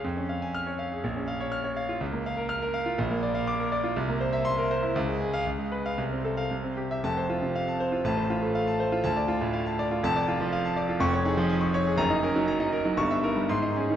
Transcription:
0.04 F2
0.17 C#4
0.29 F5
0.42 G#5
0.54 F6
0.67 C#5
0.79 F5
0.92 G#4
1.04 A#1
1.15 C#4
1.28 F5
1.40 C#5
1.52 F6
1.64 C#5
1.77 F5
1.89 F4
2.00 C#2
2.12 A#3
2.26 F5
2.37 A#4
2.49 F6
2.62 A#4
2.74 F5
2.86 F4
2.98 A#1
3.11 A#3
3.23 D5
3.35 F5
3.47 D6
3.60 A#4
3.72 D5
3.84 F4
3.96 C2
4.08 A#3
4.21 C5
4.33 E5
4.45 C6
4.58 A#4
4.71 C5
4.83 E4
4.96 C#2
5.08 G#3
5.20 G#4
5.34 F5
5.47 C#2
5.59 G#3
5.72 B4
5.86 F5
5.98 C2
6.12 C4
6.25 A4
6.37 F5
6.51 C2
6.64 C4
6.77 G4
6.91 E5
7.03 F1 F2 A5
7.17 C5
7.30 F4
7.42 C3
7.56 F5
7.68 A5
7.80 C5
7.92 F4
8.04 A1 A2 A5
8.17 C5
8.30 F4
8.42 A3
8.55 F5
8.67 A5
8.80 C5
8.92 F4
9.04 D2 A5
9.17 D5
9.28 F4
9.41 A2
9.53 F5
9.66 A5
9.79 D5
9.91 F4
10.03 F1 F2 A5
10.16 D5
10.28 F4
10.41 F3
10.53 F5
10.65 A5
10.77 D5
10.89 F4
10.99 F1 F2 C#6
11.13 C#5
11.25 D#4 G#4
11.37 F3
11.49 G#5
11.61 C#6
11.74 C#5
11.86 G#4
11.97 F#1 F#2 A#5
12.10 D#4 D#5
12.23 C#4 A#4
12.35 F#3 D#4
12.48 A#5
12.60 D#4 D#5
12.73 A#4
12.85 F#3 D#4
12.97 G1 G2 C#6
13.11 E5
13.24 D#4 A#4
13.36 G3
13.49 G#2 C6
13.62 D#4 D#5
13.76 C#4 G#4
13.90 D#3 D#4

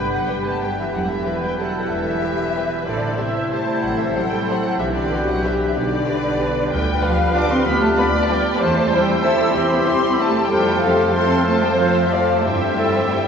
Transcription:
Already playing: G1 D3 G3 B3 G4 B4 G5 G6
0.11 F#3 F#5
0.27 G3 G4 B4 G5
0.44 A3 A5
0.61 G3 G4 B4 G5
0.78 E3 E5
0.93 E1 B2 F#3 G3 B3 E4 B4 F#5 G6
1.08 E3 E5
1.25 G4 B4
1.42 G3 G5
1.58 F#3 G4 A4 B4 F#5
1.90 E1 E3 E5
2.22 G4 B4
2.56 G4 B4
2.86 A1 A2 D3 G3 C4 E4 A4 C5 D5 G6
3.17 C3 G4 C5 E5
3.51 A3 G4 C5 A5
3.82 A1 F#3 A4 F#5
3.98 E3 E5
4.14 F#3 G4 C5 F#5
4.30 G3 G5
4.46 F#3 G4 C5 F#5
4.79 B1 B2 E3 G3 D4 G4 B4 E5 G6
4.94 D3 D5
5.11 F#4 G4 B4
5.28 F#3 F#5
5.44 E3 B3 G4 B4 E5
5.75 B1 D3 D5
6.06 G4 B4
6.38 G4 B4
6.71 D2 D3 G3 B3 F4 G4 B4 G5 F6
7.02 F3 F4 B4 F5
7.35 D4 F4 B4 D6
7.51 C4 C6
7.65 D2 B3 G4 B5
7.81 A3 A5
7.96 B3 F4 B4 D5 B5
8.22 A3 A5
8.29 G3 F4 B4 G5
8.53 B3 B5
8.60 E2 C3 G3 A3 C4 E4 G4 C5 A5 E6
8.91 G3 E4 C5 G5
9.23 E4 A4 C5 E6
9.55 E2 C4 G4 C6
9.70 B3 B5
9.86 C4 E4 C5 C6
10.12 B3 B5
10.20 A3 E4 C5 A5
10.43 G3 G5
10.50 F2 C3 G3 A3 C4 F4 A4 C5 G5 F6
10.82 C3 F3 A3 C4 F4 A4 C5 F5
11.14 C3 A3 C4 F4 A4 C5 C6
11.45 C3 A3 C4 F4 A4 C5 A5
11.62 G3 G5
11.78 C3 F3 A3 C4 F4 A4 C5 F5
12.04 E3 E5
12.11 C3 F3 A3 C4 F4 A4 C5 D5 F5
12.37 A3 A5
12.44 G2 G3 C4 E4 G4 C5 E5 G5 E6
12.79 A4
13.15 G4

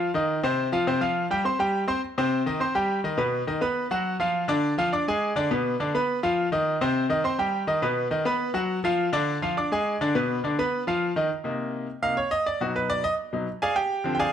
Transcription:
0.14 D#3 D#4 D#5
0.43 C3 C4 C5
0.72 F3 F4 F5
0.87 C3 C4 C5
1.01 F3 F4 F5
1.31 G3 G4 G5
1.45 C4 C5 C6
1.59 G3 G4 G5
1.88 C4 C5 C6
2.18 C3 C4 C5
2.46 D#3 D#4 D#5
2.60 C4 C5 C6
2.75 G3 G4 G5
3.04 D#3 D#4 D#5
3.18 B2 B3 B4
3.47 D#3 D#4 D#5
3.61 B3 B4 B5
3.91 F#3 F#4 F#5
4.20 F3 F4 F5
4.48 D3 D4 D5
4.78 F3 F4 F5
4.92 D4 D5 D6
5.08 G#3 G#4 G#5
5.36 D3 D4 D5
5.51 B2 B3 B4
5.80 D3 D4 D5
5.95 B3 B4 B5
6.23 F3 F4 F5
6.52 D#3 D#4 D#5
6.81 C3 C4 C5
7.09 D#3 D#4 D#5
7.24 C4 C5 C6
7.39 G3 G4 G5
7.67 D#3 D#4 D#5
7.82 B2 B3 B4
8.11 D#3 D#4 D#5
8.25 B3 B4 B5
8.54 F#3 F#4 F#5
8.84 F3 F4 F5
9.13 D3 D4 D5
9.42 F3 F4 F5
9.57 D4 D5 D6
9.72 G#3 G#4 G#5
10.01 D3 D4 D5
10.15 B2 B3 B4
10.44 D3 D4 D5
10.59 B3 B4 B5
10.87 F3 F4 F5
11.16 D#3 D#4 D#5
11.44 C3 A#3 D#4
12.02 C3 A#3 D#4 F5
12.17 C#5
12.31 D#5
12.46 D5
12.61 B2 F#3 D#4 F#4
12.76 B4
12.90 D5
13.04 D#5
13.33 B2 F#3 D#4
13.62 G#4 D5 F5 G#5
13.76 G4 G5
14.04 D3 F3 C4
14.15 G5
14.19 G#4 D5 F5 G#5

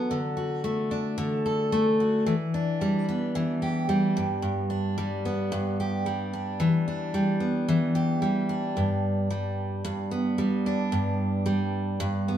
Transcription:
Already playing: F#3 B3 D4 A4
0.11 D3
0.37 F#4
0.64 A3
0.91 D4
1.18 D3
1.46 A4
1.72 A3
2.00 F#4
2.26 E3
2.54 D4
2.81 G3
3.09 B3
3.35 E3
3.62 G4
3.89 G3
4.17 G2
4.42 G2
4.70 D4
4.98 G3
5.25 B3
5.52 G2
5.80 G4
6.06 G3
6.33 D4
6.60 E3
6.88 D4
7.14 G3
7.40 B3
7.68 E3
7.95 G4
8.22 G3
8.49 D4
8.77 G2
9.30 G3
9.85 G2
10.11 B3
10.38 G3
10.66 D4
10.92 G2
11.46 G3
12.00 G2
12.28 B3

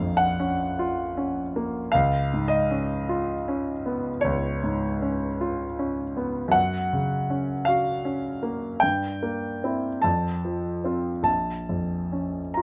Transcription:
Already playing: A#1 A#3 C#4 F4 D#5 F5
0.00 F2
0.17 F#5
0.40 C#4
0.79 F4
1.17 C#4
1.56 A#3
1.92 C#2 F5
2.33 G#2
2.48 D#5
2.71 C#4
3.09 F4
3.48 C#4
3.86 B3
4.21 C#2 C#5
4.63 G#2
5.02 C#4
5.41 F4
5.79 C#4
6.17 B3
6.48 F#2 F#5
6.93 C#3
7.30 C#4
7.65 F#4 F5
8.05 C#4
8.43 A#3
8.80 G2 G5
9.23 A#3
9.64 C4 E4
10.02 F2 A5
10.45 F3
10.84 C4 F4
11.23 A#1 A5
11.69 F2
12.12 C#4
12.54 F4 A#5

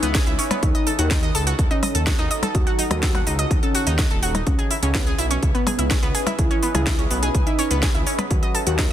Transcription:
Already playing: C#4 G#4 B4 D#5 E5, downlifter
0.03 C#2 B3 B4, closed hi-hat
0.15 G#4 G#5, kick, snare, closed hi-hat
0.27 C#2 E4 E5, closed hi-hat
0.39 C#4 C#5, open hi-hat
0.51 B3 B4, closed hi-hat, percussion blips
0.63 D#2 D#4 F#4 A4, kick, closed hi-hat
0.75 D#5 D#6, closed hi-hat
0.87 A4 A5, open hi-hat
0.99 D#2 D#4 F#4 F#5, closed hi-hat
1.11 D#4 D#5, kick, snare, closed hi-hat
1.23 D#5 D#6, closed hi-hat
1.35 C#2 A4 A5, open hi-hat
1.47 F#4 F#5, closed hi-hat
1.59 D#2, kick, closed hi-hat
1.71 C#4 D#4 D#5, closed hi-hat
1.83 D#5 D#6, open hi-hat, percussion blips
1.95 D#2 A4 A5, closed hi-hat
2.07 F#4 F#5, kick, snare, closed hi-hat
2.19 D#2 D#4 D#5, closed hi-hat
2.31 D#5 D#6, open hi-hat
2.43 A4 A5, closed hi-hat, percussion blips
2.55 D#2 F#4, kick, closed hi-hat
2.67 F#4 F#5, closed hi-hat
2.79 D#4 D#5, open hi-hat
2.91 D#2 F#4 D#5 D#6, closed hi-hat, percussion blips
3.03 A4 A5, kick, snare, closed hi-hat
3.15 F#4 F#5, closed hi-hat, percussion blips
3.27 C#2 D#4 D#5, open hi-hat
3.39 D#5 D#6, closed hi-hat
3.51 D#2, kick, closed hi-hat
3.63 C#4 A4 A5, closed hi-hat
3.75 F#4 F#5, open hi-hat
3.87 D#2 D#4 D#5, closed hi-hat
3.99 D#5 D#6, kick, snare, closed hi-hat
4.11 D#1 A4 A5, closed hi-hat
4.23 F#4 F#5, open hi-hat
4.35 D#4 D#5, closed hi-hat, percussion blips
4.47 C#2 C#4 G#4 B4 D#5 E5, kick, closed hi-hat
4.59 G#4 G#5, closed hi-hat
4.71 E4 E5, open hi-hat
4.83 C#2 C#4 C#5, closed hi-hat
4.95 B3 B4, kick, snare, closed hi-hat
5.07 G#4 G#5, closed hi-hat
5.19 B1 E4 E5, open hi-hat
5.31 C#4 C#5, closed hi-hat
5.43 C#2, kick, closed hi-hat
5.55 B3 B4, closed hi-hat
5.67 G#4 G#5, open hi-hat, percussion blips
5.79 C#2 E4 E5, closed hi-hat
5.91 C#4 C#5, kick, snare, closed hi-hat
6.03 C#2 B3 B4, closed hi-hat
6.15 G#4 G#5, open hi-hat
6.27 E4 E5, closed hi-hat, percussion blips
6.38 C#2 E4, kick, closed hi-hat
6.51 C#4 C#5, closed hi-hat
6.63 B3 B4, open hi-hat
6.74 C#2 E4 G#4 G#5, closed hi-hat, percussion blips
6.87 E4 E5, kick, snare, closed hi-hat
6.99 C#4 C#5, closed hi-hat
7.11 B1 B3 B4, open hi-hat
7.23 G#4 G#5, closed hi-hat
7.35 C#2, kick, closed hi-hat
7.47 D#4 E4 E5, closed hi-hat
7.59 C#4 C#5, open hi-hat
7.71 C#2 B3 B4, closed hi-hat
7.83 G#4 G#5, kick, snare, closed hi-hat
7.95 C#2 E4 E5, closed hi-hat
8.07 C#4 C#5, open hi-hat
8.19 B3 B4, closed hi-hat, percussion blips
8.31 D#2 D#4 F#4 A4, kick, closed hi-hat
8.43 D#5 D#6, closed hi-hat
8.55 A4 A5, open hi-hat
8.67 D#2 F#4 F#5, closed hi-hat
8.79 D#4 D#5, kick, snare, closed hi-hat

